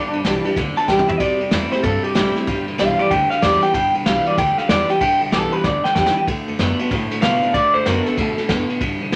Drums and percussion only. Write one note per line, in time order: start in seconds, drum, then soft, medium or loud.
0.13 ride medium
0.25 snare loud
0.25 ride medium
0.45 ride medium
0.56 kick loud
0.56 snare soft
0.56 ride medium
0.77 snare soft
0.77 ride medium
0.88 kick medium
0.88 snare medium
0.99 mid tom medium
1.09 floor tom loud
1.20 kick loud
1.20 ride medium
1.40 ride medium
1.51 snare loud
1.51 ride medium
1.72 snare soft
1.72 ride medium
1.84 kick loud
1.84 ride medium
2.04 ride medium
2.15 snare loud
2.15 ride medium
2.36 snare soft
2.36 ride medium
2.47 kick loud
2.47 ride medium
2.68 ride medium
2.79 snare loud
2.79 ride medium
2.99 ride medium
3.11 kick loud
3.11 ride medium
3.31 snare soft
3.31 ride medium
3.42 kick medium
3.42 snare loud
3.42 ride medium
3.63 snare soft
3.63 ride medium
3.74 kick loud
3.74 ride medium
3.94 ride medium
4.06 snare loud
4.06 ride medium
4.26 ride medium
4.37 kick loud
4.37 snare soft
4.37 ride medium
4.58 snare soft
4.58 ride medium
4.69 snare loud
4.69 ride medium
4.89 snare soft
4.89 ride medium
5.01 kick loud
5.01 ride medium
5.21 ride medium
5.32 snare loud
5.32 ride medium
5.52 ride medium
5.64 kick loud
5.64 snare medium
5.85 snare medium
5.95 kick medium
5.95 snare medium
6.06 snare loud
6.27 kick loud
6.27 ride medium
6.48 ride medium
6.59 snare loud
6.59 ride medium
6.79 ride medium
6.91 kick loud
6.91 ride medium
7.11 snare soft
7.11 ride medium
7.22 snare loud
7.22 ride loud
7.43 ride medium
7.54 kick loud
7.54 ride medium
7.74 ride medium
7.86 snare loud
7.86 ride medium
8.06 snare soft
8.06 ride medium
8.18 kick loud
8.18 snare soft
8.18 ride medium
8.38 snare soft
8.38 ride medium
8.49 kick medium
8.49 snare loud
8.49 ride medium
8.69 ride medium
8.81 kick loud
8.81 ride medium
9.01 ride medium
9.12 snare loud
9.12 ride medium